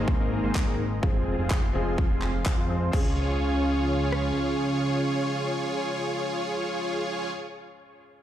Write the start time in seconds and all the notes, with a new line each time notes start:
Already playing: G#1 G#2 D#3 A#3 C4 D#4 G#4 C5 D#5 A#5
0.08 kick
0.20 G#1 A#3 C4 D#4 G#4 A#4
0.43 G#1 A#3 C4 D#4 G#4 C5
0.55 kick, clap
0.67 G#1 A#3 C4 D#4 G#4 A#4
1.02 F1 F3 G#3 C4 F4 G#4 F5 C6, kick
1.39 F1 C4 F4 G#4
1.50 kick, clap
1.73 F1 F3 G#3 C4 F4 G#4
1.98 kick
2.10 F1 C4 F4 G#4
2.22 clap
2.46 F1 C4 F4 C5, kick, clap
2.58 F2 C4 F4 C5
2.69 F3 G#3 C4 G#4
2.92 C#2 C#3 F3 G#3 C#4 F4 G#4 C#5 F5, kick, crash
4.12 cross-stick